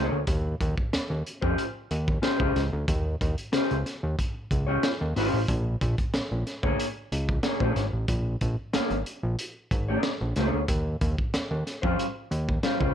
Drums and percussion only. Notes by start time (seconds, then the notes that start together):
0.27 kick, closed hi-hat
0.61 kick, closed hi-hat
0.78 kick
0.93 snare, closed hi-hat
1.27 closed hi-hat
1.42 kick
1.58 closed hi-hat
1.91 closed hi-hat
2.08 kick
2.23 snare, closed hi-hat
2.40 kick
2.56 snare, closed hi-hat
2.88 kick, closed hi-hat
3.21 kick, closed hi-hat
3.38 closed hi-hat
3.53 snare, closed hi-hat
3.71 closed hi-hat
3.86 snare, closed hi-hat
4.19 kick, closed hi-hat
4.51 kick, closed hi-hat
4.83 snare, closed hi-hat
5.16 snare, open hi-hat
5.48 kick, closed hi-hat
5.81 kick, closed hi-hat
5.98 kick, closed hi-hat
6.14 snare, closed hi-hat
6.47 snare, closed hi-hat
6.63 kick
6.80 closed hi-hat
7.12 closed hi-hat
7.29 kick
7.43 snare, closed hi-hat
7.60 kick
7.76 snare, closed hi-hat
8.08 kick, closed hi-hat
8.41 kick, closed hi-hat
8.73 snare, closed hi-hat
8.90 closed hi-hat
9.06 closed hi-hat
9.39 closed hi-hat
9.71 kick, closed hi-hat
10.03 snare, closed hi-hat
10.36 snare, closed hi-hat
10.68 kick, closed hi-hat
11.01 kick, closed hi-hat
11.18 kick
11.34 snare, closed hi-hat
11.67 snare, closed hi-hat
11.83 kick
11.99 closed hi-hat
12.32 closed hi-hat
12.49 kick
12.63 snare, closed hi-hat
12.81 kick